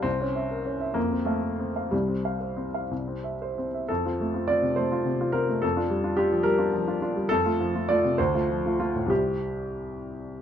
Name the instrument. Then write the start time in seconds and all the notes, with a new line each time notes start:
grand piano
0.02 C2 C4
0.21 C#4
0.36 E5
0.51 A#4
0.66 C#4
0.81 E5
0.94 F2 A#3
1.12 C4
1.25 A3 F5
1.44 A4
1.60 C4
1.76 F5
1.91 C2 G3
2.08 C4
2.25 F5
2.41 C5
2.57 C4
2.74 F5
2.91 C2
3.08 C4
3.24 E5
3.42 C5
3.58 C4
3.74 E5
3.88 F2 A4
4.05 C4 F4
4.21 A3
4.34 C4 F4
4.48 C4 F4 D5
4.62 C3
4.76 A3 C5
4.92 C4 F4
5.06 C3
5.21 C4 F4
5.32 C4 F4 A#4
5.49 A3
5.62 F2 A4
5.76 D4 F4
5.90 G3
6.04 D4 F4
6.17 D4 F4 G4
6.32 F3
6.43 G3 A#4
6.58 D4 F4
6.73 F3
6.87 D4 F4
7.01 D4 F4
7.16 G3
7.29 F2 A4
7.45 A3 F4
7.60 F3
7.75 A3 F4
7.89 A3 F4 D5
8.04 C3
8.18 D2 C5
8.34 A3 F4
8.50 F3
8.66 A3 F4
8.80 A3 F4
8.96 A2
9.06 C2 G3 C4 G4
9.10 E4